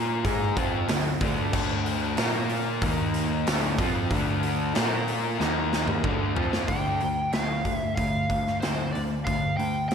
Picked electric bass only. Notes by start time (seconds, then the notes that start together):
Already playing: A#2
0.25 G#2
0.57 F2
0.90 D2
1.21 D2
1.54 D2
2.18 A#2
2.82 D#2
3.48 D2
3.79 F2
4.11 D2
4.77 A#2
5.40 D#2
6.04 D2
6.37 F2
6.69 D2
7.03 D2
7.34 D2
7.65 D2
7.98 D2
8.30 D2
8.64 D2
8.97 D2
9.27 D2
9.59 D2